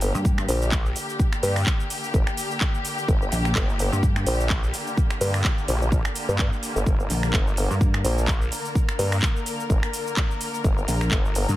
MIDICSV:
0, 0, Header, 1, 5, 480
1, 0, Start_track
1, 0, Key_signature, -2, "minor"
1, 0, Tempo, 472441
1, 1214, Time_signature, 4, 2, 24, 8
1, 11749, End_track
2, 0, Start_track
2, 0, Title_t, "String section"
2, 0, Program_c, 0, 48
2, 0, Note_on_c, 0, 50, 81
2, 0, Note_on_c, 0, 58, 76
2, 0, Note_on_c, 0, 67, 89
2, 6960, Note_off_c, 0, 67, 0
2, 6975, Note_on_c, 0, 70, 89
2, 11749, Note_off_c, 0, 50, 0
2, 11749, Note_off_c, 0, 58, 0
2, 11749, Note_off_c, 0, 70, 0
2, 11749, End_track
3, 0, Start_track
3, 0, Title_t, "Wobble bass"
3, 0, Program_c, 1, 39
3, 148, Note_on_c, 1, 43, 100
3, 477, Note_off_c, 1, 43, 0
3, 3374, Note_on_c, 1, 34, 98
3, 3597, Note_off_c, 1, 34, 0
3, 3987, Note_on_c, 1, 43, 99
3, 4317, Note_off_c, 1, 43, 0
3, 7214, Note_on_c, 1, 34, 97
3, 7437, Note_off_c, 1, 34, 0
3, 7828, Note_on_c, 1, 43, 101
3, 8157, Note_off_c, 1, 43, 0
3, 11054, Note_on_c, 1, 34, 98
3, 11277, Note_off_c, 1, 34, 0
3, 11668, Note_on_c, 1, 43, 105
3, 11749, Note_off_c, 1, 43, 0
3, 11749, End_track
4, 0, Start_track
4, 0, Title_t, "Wobble bass"
4, 0, Program_c, 2, 39
4, 0, Note_on_c, 2, 31, 104
4, 126, Note_off_c, 2, 31, 0
4, 493, Note_on_c, 2, 34, 97
4, 957, Note_off_c, 2, 34, 0
4, 1454, Note_on_c, 2, 43, 98
4, 1677, Note_off_c, 2, 43, 0
4, 2174, Note_on_c, 2, 31, 100
4, 2287, Note_off_c, 2, 31, 0
4, 3134, Note_on_c, 2, 31, 94
4, 3357, Note_off_c, 2, 31, 0
4, 3614, Note_on_c, 2, 31, 103
4, 3966, Note_off_c, 2, 31, 0
4, 4335, Note_on_c, 2, 34, 99
4, 4798, Note_off_c, 2, 34, 0
4, 5294, Note_on_c, 2, 43, 100
4, 5517, Note_off_c, 2, 43, 0
4, 5775, Note_on_c, 2, 34, 97
4, 6127, Note_off_c, 2, 34, 0
4, 6388, Note_on_c, 2, 43, 97
4, 6607, Note_off_c, 2, 43, 0
4, 6868, Note_on_c, 2, 31, 94
4, 6957, Note_off_c, 2, 31, 0
4, 6974, Note_on_c, 2, 31, 100
4, 7197, Note_off_c, 2, 31, 0
4, 7454, Note_on_c, 2, 31, 102
4, 7806, Note_off_c, 2, 31, 0
4, 8173, Note_on_c, 2, 34, 100
4, 8637, Note_off_c, 2, 34, 0
4, 9133, Note_on_c, 2, 43, 100
4, 9357, Note_off_c, 2, 43, 0
4, 9854, Note_on_c, 2, 31, 94
4, 9966, Note_off_c, 2, 31, 0
4, 10814, Note_on_c, 2, 31, 102
4, 11037, Note_off_c, 2, 31, 0
4, 11294, Note_on_c, 2, 31, 100
4, 11647, Note_off_c, 2, 31, 0
4, 11749, End_track
5, 0, Start_track
5, 0, Title_t, "Drums"
5, 13, Note_on_c, 9, 46, 103
5, 17, Note_on_c, 9, 69, 80
5, 114, Note_off_c, 9, 46, 0
5, 119, Note_off_c, 9, 69, 0
5, 151, Note_on_c, 9, 69, 35
5, 253, Note_off_c, 9, 69, 0
5, 253, Note_on_c, 9, 36, 127
5, 258, Note_on_c, 9, 69, 50
5, 355, Note_off_c, 9, 36, 0
5, 359, Note_off_c, 9, 69, 0
5, 387, Note_on_c, 9, 26, 76
5, 391, Note_on_c, 9, 69, 24
5, 488, Note_off_c, 9, 26, 0
5, 493, Note_off_c, 9, 69, 0
5, 493, Note_on_c, 9, 46, 113
5, 498, Note_on_c, 9, 69, 85
5, 595, Note_off_c, 9, 46, 0
5, 599, Note_off_c, 9, 69, 0
5, 631, Note_on_c, 9, 69, 34
5, 730, Note_on_c, 9, 39, 123
5, 733, Note_off_c, 9, 69, 0
5, 734, Note_on_c, 9, 36, 111
5, 738, Note_on_c, 9, 69, 49
5, 832, Note_off_c, 9, 39, 0
5, 835, Note_off_c, 9, 36, 0
5, 840, Note_off_c, 9, 69, 0
5, 872, Note_on_c, 9, 69, 23
5, 973, Note_on_c, 9, 46, 106
5, 974, Note_off_c, 9, 69, 0
5, 977, Note_on_c, 9, 69, 85
5, 1075, Note_off_c, 9, 46, 0
5, 1079, Note_off_c, 9, 69, 0
5, 1111, Note_on_c, 9, 69, 37
5, 1213, Note_off_c, 9, 69, 0
5, 1214, Note_on_c, 9, 36, 126
5, 1217, Note_on_c, 9, 69, 46
5, 1315, Note_off_c, 9, 36, 0
5, 1319, Note_off_c, 9, 69, 0
5, 1347, Note_on_c, 9, 26, 81
5, 1351, Note_on_c, 9, 69, 23
5, 1448, Note_off_c, 9, 26, 0
5, 1453, Note_off_c, 9, 69, 0
5, 1453, Note_on_c, 9, 46, 113
5, 1457, Note_on_c, 9, 69, 81
5, 1554, Note_off_c, 9, 46, 0
5, 1559, Note_off_c, 9, 69, 0
5, 1587, Note_on_c, 9, 26, 64
5, 1587, Note_on_c, 9, 46, 64
5, 1591, Note_on_c, 9, 69, 34
5, 1688, Note_off_c, 9, 26, 0
5, 1688, Note_off_c, 9, 46, 0
5, 1690, Note_on_c, 9, 39, 127
5, 1693, Note_off_c, 9, 69, 0
5, 1694, Note_on_c, 9, 36, 119
5, 1698, Note_on_c, 9, 69, 46
5, 1792, Note_off_c, 9, 39, 0
5, 1795, Note_off_c, 9, 36, 0
5, 1800, Note_off_c, 9, 69, 0
5, 1831, Note_on_c, 9, 69, 24
5, 1933, Note_off_c, 9, 69, 0
5, 1933, Note_on_c, 9, 46, 111
5, 1938, Note_on_c, 9, 69, 84
5, 2035, Note_off_c, 9, 46, 0
5, 2039, Note_off_c, 9, 69, 0
5, 2072, Note_on_c, 9, 69, 35
5, 2173, Note_off_c, 9, 69, 0
5, 2174, Note_on_c, 9, 36, 127
5, 2177, Note_on_c, 9, 69, 46
5, 2275, Note_off_c, 9, 36, 0
5, 2279, Note_off_c, 9, 69, 0
5, 2307, Note_on_c, 9, 26, 78
5, 2311, Note_on_c, 9, 69, 23
5, 2408, Note_off_c, 9, 26, 0
5, 2412, Note_on_c, 9, 46, 117
5, 2413, Note_off_c, 9, 69, 0
5, 2417, Note_on_c, 9, 69, 84
5, 2514, Note_off_c, 9, 46, 0
5, 2519, Note_off_c, 9, 69, 0
5, 2551, Note_on_c, 9, 69, 34
5, 2649, Note_on_c, 9, 39, 127
5, 2653, Note_off_c, 9, 69, 0
5, 2654, Note_on_c, 9, 36, 112
5, 2657, Note_on_c, 9, 69, 47
5, 2751, Note_off_c, 9, 39, 0
5, 2755, Note_off_c, 9, 36, 0
5, 2759, Note_off_c, 9, 69, 0
5, 2792, Note_on_c, 9, 69, 22
5, 2893, Note_off_c, 9, 69, 0
5, 2893, Note_on_c, 9, 46, 113
5, 2898, Note_on_c, 9, 69, 81
5, 2995, Note_off_c, 9, 46, 0
5, 2999, Note_off_c, 9, 69, 0
5, 3031, Note_on_c, 9, 69, 37
5, 3133, Note_off_c, 9, 69, 0
5, 3134, Note_on_c, 9, 36, 123
5, 3137, Note_on_c, 9, 69, 43
5, 3235, Note_off_c, 9, 36, 0
5, 3239, Note_off_c, 9, 69, 0
5, 3272, Note_on_c, 9, 69, 22
5, 3373, Note_off_c, 9, 69, 0
5, 3373, Note_on_c, 9, 46, 117
5, 3377, Note_on_c, 9, 69, 80
5, 3474, Note_off_c, 9, 46, 0
5, 3479, Note_off_c, 9, 69, 0
5, 3507, Note_on_c, 9, 26, 64
5, 3512, Note_on_c, 9, 69, 32
5, 3609, Note_off_c, 9, 26, 0
5, 3610, Note_on_c, 9, 39, 126
5, 3614, Note_off_c, 9, 69, 0
5, 3614, Note_on_c, 9, 36, 116
5, 3618, Note_on_c, 9, 69, 46
5, 3712, Note_off_c, 9, 39, 0
5, 3715, Note_off_c, 9, 36, 0
5, 3720, Note_off_c, 9, 69, 0
5, 3753, Note_on_c, 9, 69, 22
5, 3853, Note_on_c, 9, 46, 113
5, 3854, Note_off_c, 9, 69, 0
5, 3858, Note_on_c, 9, 69, 79
5, 3955, Note_off_c, 9, 46, 0
5, 3960, Note_off_c, 9, 69, 0
5, 3992, Note_on_c, 9, 69, 34
5, 4093, Note_on_c, 9, 36, 127
5, 4094, Note_off_c, 9, 69, 0
5, 4099, Note_on_c, 9, 69, 45
5, 4195, Note_off_c, 9, 36, 0
5, 4200, Note_off_c, 9, 69, 0
5, 4228, Note_on_c, 9, 26, 82
5, 4232, Note_on_c, 9, 69, 23
5, 4329, Note_off_c, 9, 26, 0
5, 4334, Note_off_c, 9, 69, 0
5, 4334, Note_on_c, 9, 46, 118
5, 4338, Note_on_c, 9, 69, 79
5, 4435, Note_off_c, 9, 46, 0
5, 4440, Note_off_c, 9, 69, 0
5, 4472, Note_on_c, 9, 69, 34
5, 4570, Note_on_c, 9, 39, 126
5, 4573, Note_on_c, 9, 36, 113
5, 4574, Note_off_c, 9, 69, 0
5, 4578, Note_on_c, 9, 69, 42
5, 4671, Note_off_c, 9, 39, 0
5, 4675, Note_off_c, 9, 36, 0
5, 4679, Note_off_c, 9, 69, 0
5, 4711, Note_on_c, 9, 69, 22
5, 4813, Note_off_c, 9, 69, 0
5, 4813, Note_on_c, 9, 46, 109
5, 4817, Note_on_c, 9, 69, 75
5, 4914, Note_off_c, 9, 46, 0
5, 4919, Note_off_c, 9, 69, 0
5, 4951, Note_on_c, 9, 69, 35
5, 5053, Note_off_c, 9, 69, 0
5, 5054, Note_on_c, 9, 36, 123
5, 5058, Note_on_c, 9, 69, 42
5, 5155, Note_off_c, 9, 36, 0
5, 5159, Note_off_c, 9, 69, 0
5, 5186, Note_on_c, 9, 26, 86
5, 5191, Note_on_c, 9, 69, 22
5, 5288, Note_off_c, 9, 26, 0
5, 5293, Note_off_c, 9, 69, 0
5, 5293, Note_on_c, 9, 46, 111
5, 5298, Note_on_c, 9, 69, 78
5, 5395, Note_off_c, 9, 46, 0
5, 5399, Note_off_c, 9, 69, 0
5, 5427, Note_on_c, 9, 26, 69
5, 5427, Note_on_c, 9, 46, 62
5, 5431, Note_on_c, 9, 69, 32
5, 5528, Note_off_c, 9, 26, 0
5, 5528, Note_off_c, 9, 46, 0
5, 5530, Note_on_c, 9, 39, 121
5, 5533, Note_off_c, 9, 69, 0
5, 5534, Note_on_c, 9, 36, 114
5, 5538, Note_on_c, 9, 69, 44
5, 5631, Note_off_c, 9, 39, 0
5, 5635, Note_off_c, 9, 36, 0
5, 5639, Note_off_c, 9, 69, 0
5, 5672, Note_on_c, 9, 69, 22
5, 5774, Note_off_c, 9, 69, 0
5, 5774, Note_on_c, 9, 46, 113
5, 5778, Note_on_c, 9, 69, 75
5, 5875, Note_off_c, 9, 46, 0
5, 5880, Note_off_c, 9, 69, 0
5, 5912, Note_on_c, 9, 69, 31
5, 6014, Note_off_c, 9, 69, 0
5, 6014, Note_on_c, 9, 36, 127
5, 6018, Note_on_c, 9, 69, 44
5, 6115, Note_off_c, 9, 36, 0
5, 6119, Note_off_c, 9, 69, 0
5, 6147, Note_on_c, 9, 26, 83
5, 6152, Note_on_c, 9, 69, 22
5, 6249, Note_off_c, 9, 26, 0
5, 6253, Note_off_c, 9, 69, 0
5, 6253, Note_on_c, 9, 46, 113
5, 6258, Note_on_c, 9, 69, 78
5, 6355, Note_off_c, 9, 46, 0
5, 6360, Note_off_c, 9, 69, 0
5, 6392, Note_on_c, 9, 69, 32
5, 6490, Note_on_c, 9, 39, 122
5, 6494, Note_off_c, 9, 69, 0
5, 6494, Note_on_c, 9, 36, 113
5, 6498, Note_on_c, 9, 69, 45
5, 6592, Note_off_c, 9, 39, 0
5, 6595, Note_off_c, 9, 36, 0
5, 6600, Note_off_c, 9, 69, 0
5, 6632, Note_on_c, 9, 69, 20
5, 6733, Note_off_c, 9, 69, 0
5, 6734, Note_on_c, 9, 46, 112
5, 6738, Note_on_c, 9, 69, 75
5, 6835, Note_off_c, 9, 46, 0
5, 6840, Note_off_c, 9, 69, 0
5, 6872, Note_on_c, 9, 69, 33
5, 6974, Note_off_c, 9, 69, 0
5, 6974, Note_on_c, 9, 36, 124
5, 6978, Note_on_c, 9, 69, 42
5, 7075, Note_off_c, 9, 36, 0
5, 7080, Note_off_c, 9, 69, 0
5, 7112, Note_on_c, 9, 69, 22
5, 7213, Note_off_c, 9, 69, 0
5, 7213, Note_on_c, 9, 46, 107
5, 7218, Note_on_c, 9, 69, 76
5, 7315, Note_off_c, 9, 46, 0
5, 7320, Note_off_c, 9, 69, 0
5, 7347, Note_on_c, 9, 26, 68
5, 7352, Note_on_c, 9, 69, 32
5, 7449, Note_off_c, 9, 26, 0
5, 7450, Note_on_c, 9, 39, 116
5, 7454, Note_off_c, 9, 69, 0
5, 7454, Note_on_c, 9, 36, 112
5, 7458, Note_on_c, 9, 69, 43
5, 7552, Note_off_c, 9, 39, 0
5, 7555, Note_off_c, 9, 36, 0
5, 7560, Note_off_c, 9, 69, 0
5, 7592, Note_on_c, 9, 69, 22
5, 7694, Note_off_c, 9, 69, 0
5, 7694, Note_on_c, 9, 46, 107
5, 7698, Note_on_c, 9, 69, 77
5, 7795, Note_off_c, 9, 46, 0
5, 7800, Note_off_c, 9, 69, 0
5, 7833, Note_on_c, 9, 69, 33
5, 7934, Note_off_c, 9, 69, 0
5, 7934, Note_on_c, 9, 36, 126
5, 7939, Note_on_c, 9, 69, 43
5, 8035, Note_off_c, 9, 36, 0
5, 8041, Note_off_c, 9, 69, 0
5, 8068, Note_on_c, 9, 26, 84
5, 8073, Note_on_c, 9, 69, 23
5, 8170, Note_off_c, 9, 26, 0
5, 8174, Note_off_c, 9, 69, 0
5, 8174, Note_on_c, 9, 46, 112
5, 8179, Note_on_c, 9, 69, 80
5, 8276, Note_off_c, 9, 46, 0
5, 8280, Note_off_c, 9, 69, 0
5, 8313, Note_on_c, 9, 69, 31
5, 8411, Note_on_c, 9, 39, 121
5, 8414, Note_on_c, 9, 36, 108
5, 8415, Note_off_c, 9, 69, 0
5, 8419, Note_on_c, 9, 69, 44
5, 8512, Note_off_c, 9, 39, 0
5, 8515, Note_off_c, 9, 36, 0
5, 8521, Note_off_c, 9, 69, 0
5, 8553, Note_on_c, 9, 69, 21
5, 8654, Note_off_c, 9, 69, 0
5, 8655, Note_on_c, 9, 46, 108
5, 8659, Note_on_c, 9, 69, 75
5, 8756, Note_off_c, 9, 46, 0
5, 8761, Note_off_c, 9, 69, 0
5, 8793, Note_on_c, 9, 69, 34
5, 8894, Note_on_c, 9, 36, 112
5, 8895, Note_off_c, 9, 69, 0
5, 8899, Note_on_c, 9, 69, 46
5, 8995, Note_off_c, 9, 36, 0
5, 9001, Note_off_c, 9, 69, 0
5, 9028, Note_on_c, 9, 26, 91
5, 9033, Note_on_c, 9, 69, 23
5, 9130, Note_off_c, 9, 26, 0
5, 9134, Note_on_c, 9, 46, 107
5, 9135, Note_off_c, 9, 69, 0
5, 9139, Note_on_c, 9, 69, 80
5, 9236, Note_off_c, 9, 46, 0
5, 9241, Note_off_c, 9, 69, 0
5, 9268, Note_on_c, 9, 26, 72
5, 9268, Note_on_c, 9, 46, 57
5, 9273, Note_on_c, 9, 69, 32
5, 9370, Note_off_c, 9, 26, 0
5, 9370, Note_off_c, 9, 46, 0
5, 9371, Note_on_c, 9, 39, 119
5, 9374, Note_off_c, 9, 69, 0
5, 9374, Note_on_c, 9, 36, 102
5, 9379, Note_on_c, 9, 69, 46
5, 9472, Note_off_c, 9, 39, 0
5, 9475, Note_off_c, 9, 36, 0
5, 9480, Note_off_c, 9, 69, 0
5, 9513, Note_on_c, 9, 69, 23
5, 9613, Note_on_c, 9, 46, 106
5, 9614, Note_off_c, 9, 69, 0
5, 9618, Note_on_c, 9, 69, 80
5, 9715, Note_off_c, 9, 46, 0
5, 9720, Note_off_c, 9, 69, 0
5, 9753, Note_on_c, 9, 69, 34
5, 9854, Note_off_c, 9, 69, 0
5, 9854, Note_on_c, 9, 36, 117
5, 9859, Note_on_c, 9, 69, 44
5, 9955, Note_off_c, 9, 36, 0
5, 9960, Note_off_c, 9, 69, 0
5, 9987, Note_on_c, 9, 26, 85
5, 9992, Note_on_c, 9, 69, 23
5, 10089, Note_off_c, 9, 26, 0
5, 10093, Note_off_c, 9, 69, 0
5, 10093, Note_on_c, 9, 46, 110
5, 10098, Note_on_c, 9, 69, 85
5, 10195, Note_off_c, 9, 46, 0
5, 10200, Note_off_c, 9, 69, 0
5, 10232, Note_on_c, 9, 69, 34
5, 10330, Note_on_c, 9, 39, 115
5, 10333, Note_off_c, 9, 69, 0
5, 10334, Note_on_c, 9, 36, 109
5, 10338, Note_on_c, 9, 69, 46
5, 10432, Note_off_c, 9, 39, 0
5, 10435, Note_off_c, 9, 36, 0
5, 10440, Note_off_c, 9, 69, 0
5, 10472, Note_on_c, 9, 69, 23
5, 10574, Note_off_c, 9, 69, 0
5, 10574, Note_on_c, 9, 46, 103
5, 10578, Note_on_c, 9, 69, 80
5, 10675, Note_off_c, 9, 46, 0
5, 10680, Note_off_c, 9, 69, 0
5, 10712, Note_on_c, 9, 69, 34
5, 10814, Note_off_c, 9, 69, 0
5, 10814, Note_on_c, 9, 36, 116
5, 10818, Note_on_c, 9, 69, 47
5, 10916, Note_off_c, 9, 36, 0
5, 10920, Note_off_c, 9, 69, 0
5, 10952, Note_on_c, 9, 69, 23
5, 11053, Note_on_c, 9, 46, 104
5, 11054, Note_off_c, 9, 69, 0
5, 11058, Note_on_c, 9, 69, 84
5, 11155, Note_off_c, 9, 46, 0
5, 11160, Note_off_c, 9, 69, 0
5, 11187, Note_on_c, 9, 26, 69
5, 11192, Note_on_c, 9, 69, 34
5, 11289, Note_off_c, 9, 26, 0
5, 11290, Note_on_c, 9, 39, 125
5, 11294, Note_off_c, 9, 69, 0
5, 11294, Note_on_c, 9, 36, 108
5, 11298, Note_on_c, 9, 69, 47
5, 11391, Note_off_c, 9, 39, 0
5, 11396, Note_off_c, 9, 36, 0
5, 11400, Note_off_c, 9, 69, 0
5, 11432, Note_on_c, 9, 69, 23
5, 11534, Note_off_c, 9, 69, 0
5, 11534, Note_on_c, 9, 46, 102
5, 11538, Note_on_c, 9, 69, 82
5, 11635, Note_off_c, 9, 46, 0
5, 11640, Note_off_c, 9, 69, 0
5, 11672, Note_on_c, 9, 69, 35
5, 11749, Note_off_c, 9, 69, 0
5, 11749, End_track
0, 0, End_of_file